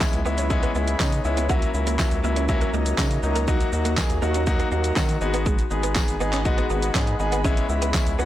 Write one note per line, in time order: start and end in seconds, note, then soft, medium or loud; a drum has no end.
0.00 0.20 G#3 medium
0.00 0.20 B3 medium
0.00 0.20 C#4 medium
0.00 1.48 E4 medium
0.00 0.20 E4 loud
0.00 1.48 C#5 medium
0.00 1.47 B5 medium
0.00 muted clean electric guitar stroke soft
0.00 kick loud
0.00 snare loud
0.00 clap loud
0.00 tambourine medium
0.00 shaker medium
0.13 0.23 C#2 loud
0.13 closed hi-hat medium
0.13 shaker medium
0.25 0.66 C#2 loud
0.25 0.45 G#3 medium
0.25 0.45 B3 medium
0.25 0.36 B3 medium
0.25 0.45 C#4 medium
0.25 0.45 E4 loud
0.25 shaker medium
0.38 0.48 C#4 medium
0.38 closed hi-hat medium
0.38 shaker medium
0.50 0.70 G#3 loud
0.50 0.70 B3 loud
0.50 0.70 C#4 loud
0.50 0.70 E4 loud
0.50 muted clean electric guitar stroke soft
0.50 kick loud
0.50 shaker medium
0.63 0.73 B3 medium
0.63 closed hi-hat soft
0.63 shaker soft
0.75 0.96 C#2 loud
0.75 0.94 G#3 medium
0.75 0.94 B3 medium
0.75 0.85 B3 medium
0.75 0.95 C#4 medium
0.75 0.95 E4 medium
0.75 shaker soft
0.88 closed hi-hat medium
0.88 shaker medium
1.00 1.20 C#3 loud
1.00 1.19 G#3 medium
1.00 1.19 C#4 medium
1.00 1.10 C#4 medium
1.00 1.19 D#4 loud
1.00 kick loud
1.00 snare medium
1.00 clap loud
1.00 tambourine medium
1.00 shaker medium
1.12 closed hi-hat soft
1.12 shaker soft
1.25 1.66 C#2 loud
1.25 1.44 G#3 medium
1.25 1.44 B3 medium
1.25 1.44 C#4 medium
1.25 1.44 E4 loud
1.25 muted clean electric guitar stroke soft
1.25 shaker medium
1.37 1.47 B3 medium
1.37 closed hi-hat medium
1.37 shaker medium
1.49 1.69 F#3 loud
1.49 1.69 A#3 loud
1.49 1.69 C#4 loud
1.49 1.69 E4 loud
1.49 1.60 F#4 medium
1.49 5.18 F#4 medium
1.49 3.46 E5 medium
1.49 5.18 A#5 medium
1.49 kick loud
1.49 shaker medium
1.62 closed hi-hat soft
1.62 shaker soft
1.74 2.05 C#2 loud
1.74 1.94 F#3 medium
1.74 1.94 A#3 medium
1.74 1.94 C#4 medium
1.74 1.94 E4 medium
1.74 muted clean electric guitar stroke soft
1.74 shaker medium
1.87 1.97 A#3 medium
1.87 closed hi-hat medium
1.87 shaker medium
1.99 2.18 F#3 medium
1.99 2.18 A#3 medium
1.99 2.19 C#4 medium
1.99 2.19 E4 loud
1.99 muted clean electric guitar stroke soft
1.99 kick loud
1.99 snare loud
1.99 clap loud
1.99 tambourine medium
1.99 shaker medium
2.11 2.22 C#2 loud
2.11 closed hi-hat medium
2.11 shaker medium
2.24 2.65 C#2 loud
2.24 2.43 F#3 medium
2.24 2.43 A#3 medium
2.24 2.34 A#3 medium
2.24 2.43 C#4 medium
2.24 2.43 E4 loud
2.24 shaker medium
2.36 2.46 C#4 medium
2.36 closed hi-hat medium
2.36 shaker medium
2.49 2.68 F#3 loud
2.49 2.68 A#3 loud
2.49 2.68 C#4 loud
2.49 2.68 E4 loud
2.49 muted clean electric guitar stroke soft
2.49 kick loud
2.49 shaker medium
2.61 2.71 A#3 medium
2.61 closed hi-hat soft
2.61 shaker soft
2.73 2.94 C#2 loud
2.73 2.93 F#3 medium
2.73 2.84 A#3 medium
2.73 2.93 A#3 medium
2.73 2.93 C#4 medium
2.73 2.93 D#4 medium
2.73 shaker soft
2.86 closed hi-hat medium
2.86 shaker medium
2.98 3.19 C#3 loud
2.98 3.18 F#3 medium
2.98 3.18 A#3 medium
2.98 3.08 C#4 medium
2.98 3.18 C#4 medium
2.98 3.18 D#4 loud
2.98 kick loud
2.98 snare medium
2.98 clap loud
2.98 tambourine medium
2.98 shaker medium
3.11 closed hi-hat soft
3.11 shaker soft
3.23 3.64 C#2 loud
3.23 3.42 F#3 medium
3.23 3.42 A#3 medium
3.23 3.43 C#4 medium
3.23 3.43 D#4 loud
3.23 muted clean electric guitar stroke soft
3.23 shaker medium
3.35 3.45 A#3 medium
3.35 closed hi-hat medium
3.35 shaker medium
3.48 3.67 F#3 loud
3.48 3.67 A#3 loud
3.48 3.58 D#4 medium
3.48 3.67 D#4 loud
3.48 3.67 F#4 loud
3.48 5.20 D#5 medium
3.48 kick loud
3.48 shaker medium
3.61 closed hi-hat soft
3.61 shaker soft
3.72 4.03 D#2 loud
3.72 3.92 F#3 medium
3.72 3.92 A#3 medium
3.72 3.92 D#4 medium
3.72 3.92 F#4 medium
3.72 muted clean electric guitar stroke soft
3.72 shaker medium
3.85 3.95 A#3 medium
3.85 closed hi-hat medium
3.85 shaker medium
3.97 4.17 F#3 medium
3.97 4.17 A#3 medium
3.97 4.17 D#4 medium
3.97 4.17 G#4 medium
3.97 muted clean electric guitar stroke soft
3.97 kick loud
3.97 snare loud
3.97 clap loud
3.97 tambourine medium
3.97 shaker medium
4.10 4.20 D#2 loud
4.10 closed hi-hat medium
4.10 shaker medium
4.22 4.63 D#2 loud
4.22 4.41 F#3 medium
4.22 4.32 A#3 medium
4.22 4.42 A#3 medium
4.22 4.42 D#4 medium
4.22 4.42 F#4 loud
4.22 shaker medium
4.34 4.45 C#4 medium
4.34 closed hi-hat medium
4.34 shaker medium
4.47 4.66 F#3 loud
4.47 4.66 A#3 loud
4.47 4.66 D#4 loud
4.47 4.66 F#4 loud
4.47 muted clean electric guitar stroke soft
4.47 kick loud
4.47 shaker medium
4.59 4.69 A#3 medium
4.59 closed hi-hat soft
4.59 shaker soft
4.71 4.92 D#2 medium
4.71 4.91 F#3 medium
4.71 4.82 A#3 medium
4.71 4.91 A#3 medium
4.71 4.91 D#4 medium
4.71 4.91 F#4 medium
4.71 shaker soft
4.84 closed hi-hat medium
4.84 shaker medium
4.96 5.17 D#3 loud
4.96 5.16 F#3 medium
4.96 5.16 A#3 medium
4.96 5.07 C#4 medium
4.96 5.16 D#4 medium
4.96 5.16 F#4 loud
4.96 kick loud
4.96 snare medium
4.96 clap loud
4.96 tambourine medium
4.96 shaker medium
5.09 closed hi-hat soft
5.09 shaker soft
5.21 5.62 G#1 loud
5.21 5.61 G#3 loud
5.21 5.61 B3 medium
5.21 5.61 D#4 medium
5.21 5.61 F#4 loud
5.21 7.42 G#4 medium
5.21 7.42 F#5 medium
5.21 8.25 B5 loud
5.21 muted clean electric guitar stroke soft
5.21 shaker medium
5.34 5.44 B3 medium
5.34 closed hi-hat medium
5.34 shaker medium
5.46 5.56 G#3 medium
5.46 kick loud
5.46 shaker medium
5.59 closed hi-hat soft
5.59 shaker soft
5.70 6.02 G#1 medium
5.70 5.90 G#3 medium
5.70 5.90 B3 medium
5.70 5.90 D#4 medium
5.70 5.90 G#4 medium
5.70 muted clean electric guitar stroke soft
5.70 shaker medium
5.83 5.93 B3 medium
5.83 closed hi-hat medium
5.83 shaker medium
5.95 6.15 G#3 medium
5.95 6.15 B3 medium
5.95 6.15 D#4 medium
5.95 6.15 G#4 loud
5.95 muted clean electric guitar stroke soft
5.95 kick loud
5.95 snare loud
5.95 clap loud
5.95 tambourine medium
5.95 shaker medium
6.08 6.18 G#1 loud
6.08 closed hi-hat medium
6.08 shaker medium
6.20 6.61 G#1 loud
6.20 6.40 G#3 medium
6.20 6.40 B3 medium
6.20 6.31 B3 medium
6.20 6.40 D#4 medium
6.20 6.40 G#4 loud
6.20 shaker medium
6.33 6.43 C#4 medium
6.33 clap medium
6.33 closed hi-hat medium
6.33 shaker medium
6.45 6.65 G#3 loud
6.45 6.65 B3 loud
6.45 6.65 D#4 loud
6.45 6.65 F#4 loud
6.45 muted clean electric guitar stroke soft
6.45 kick loud
6.45 shaker medium
6.58 6.68 B3 medium
6.58 closed hi-hat soft
6.58 shaker soft
6.70 6.91 G#1 loud
6.70 6.89 G#3 medium
6.70 6.80 B3 medium
6.70 6.90 B3 medium
6.70 6.90 D#4 medium
6.70 6.90 F#4 medium
6.70 shaker soft
6.82 closed hi-hat medium
6.82 shaker medium
6.95 7.15 G#2 loud
6.95 7.14 G#3 medium
6.95 7.14 B3 medium
6.95 7.05 C#4 medium
6.95 7.14 D#4 medium
6.95 7.14 G#4 loud
6.95 kick loud
6.95 snare loud
6.95 clap loud
6.95 tambourine medium
6.95 shaker medium
7.07 closed hi-hat soft
7.07 shaker soft
7.19 7.61 G#1 loud
7.19 7.39 G#3 medium
7.19 7.39 B3 medium
7.19 7.39 D#4 medium
7.19 7.39 G#4 loud
7.19 muted clean electric guitar stroke soft
7.19 shaker soft
7.32 7.42 B3 medium
7.32 closed hi-hat medium
7.32 shaker medium
7.44 7.64 G#3 loud
7.44 7.64 B3 loud
7.44 7.55 C#4 medium
7.44 7.64 C#4 loud
7.44 8.25 E4 medium
7.44 7.64 E4 loud
7.44 8.25 C#5 medium
7.44 kick loud
7.44 shaker medium
7.57 closed hi-hat soft
7.57 shaker soft
7.69 8.00 C#2 medium
7.69 7.89 G#3 medium
7.69 7.89 B3 medium
7.69 7.89 C#4 medium
7.69 7.89 E4 medium
7.69 muted clean electric guitar stroke soft
7.69 shaker medium
7.82 7.92 B3 medium
7.82 closed hi-hat medium
7.82 shaker medium
7.94 8.13 G#3 medium
7.94 8.13 B3 medium
7.94 8.14 C#4 medium
7.94 8.14 E4 loud
7.94 kick loud
7.94 snare loud
7.94 clap loud
7.94 tambourine medium
7.94 shaker medium
8.06 8.17 C#2 loud
8.06 closed hi-hat medium
8.06 shaker medium
8.19 8.25 C#2 loud
8.19 8.25 G#3 medium
8.19 8.25 B3 medium
8.19 8.25 C#4 medium
8.19 8.25 F#4 loud
8.19 shaker medium